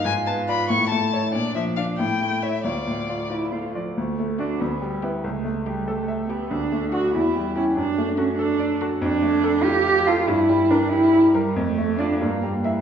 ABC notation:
X:1
M:6/8
L:1/8
Q:3/8=94
K:Dm
V:1 name="Violin"
^g a =b ^c' a2 | d e f g2 e | d3 z3 | [K:D] z2 F z2 G |
z2 G z2 G | z2 F z2 G | z2 A z2 A | [K:Dm] z2 A z2 A |
z2 B z2 B | z2 d z2 e |]
V:2 name="Grand piano"
^G,, =B, [^Ed] A,, A, [=E^c] | B,, F, [Dd] A,, A, [E^c] | D,, A,, [Fd] [Fd] A, [Fd] | [K:D] D,, A, [Fd] D,, G, [EB] |
C,, A, G A e G | D,, A, [DF] E,, G, [CG] | F,, A, F A d F | [K:Dm] F,, A, A F f A |
G,, G, B G e B | F,, A, [Fd] G,, G, [Ee] |]
V:3 name="Cello"
^E3 =E3 | D3 E3 | F3 E F F, | [K:D] A,2 D B,2 B, |
A,2 G, A,2 B, | D2 F E2 E | D2 C D2 z | [K:Dm] D3 G2 F |
E2 D E2 G, | A,2 D B,2 B, |]